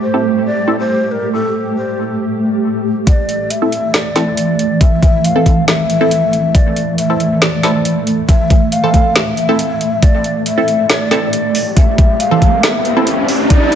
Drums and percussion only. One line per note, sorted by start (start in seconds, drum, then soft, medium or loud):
3.07 kick loud
3.07 closed hi-hat medium
3.29 closed hi-hat medium
3.50 closed hi-hat medium
3.72 closed hi-hat medium
3.94 snare loud
3.94 closed hi-hat medium
4.16 snare medium
4.16 closed hi-hat medium
4.37 closed hi-hat medium
4.59 closed hi-hat medium
4.81 kick loud
4.81 closed hi-hat medium
5.03 kick loud
5.03 closed hi-hat medium
5.24 closed hi-hat medium
5.46 kick medium
5.46 closed hi-hat medium
5.68 snare loud
5.68 closed hi-hat medium
5.90 closed hi-hat medium
6.11 closed hi-hat medium
6.33 closed hi-hat medium
6.55 kick loud
6.55 closed hi-hat medium
6.76 closed hi-hat medium
6.98 closed hi-hat medium
7.20 closed hi-hat medium
7.42 snare loud
7.42 closed hi-hat medium
7.63 snare medium
7.63 closed hi-hat medium
7.85 closed hi-hat medium
8.07 closed hi-hat medium
8.29 kick loud
8.29 closed hi-hat medium
8.50 kick loud
8.50 closed hi-hat medium
8.72 closed hi-hat medium
8.94 kick medium
8.94 closed hi-hat medium
9.16 snare loud
9.16 closed hi-hat medium
9.37 closed hi-hat medium
9.59 closed hi-hat medium
9.81 closed hi-hat medium
10.03 kick loud
10.03 closed hi-hat medium
10.24 closed hi-hat soft
10.46 closed hi-hat medium
10.68 closed hi-hat medium
10.90 snare loud
10.90 closed hi-hat medium
11.11 snare medium
11.11 closed hi-hat soft
11.33 closed hi-hat medium
11.55 open hi-hat medium
11.77 kick loud
11.77 closed hi-hat medium
11.98 kick loud
11.98 closed hi-hat medium
12.20 closed hi-hat medium
12.42 kick medium
12.42 closed hi-hat medium
12.63 snare loud
12.63 closed hi-hat medium
12.85 closed hi-hat soft
13.07 closed hi-hat medium
13.28 open hi-hat medium
13.50 kick loud
13.50 closed hi-hat medium
13.72 closed hi-hat medium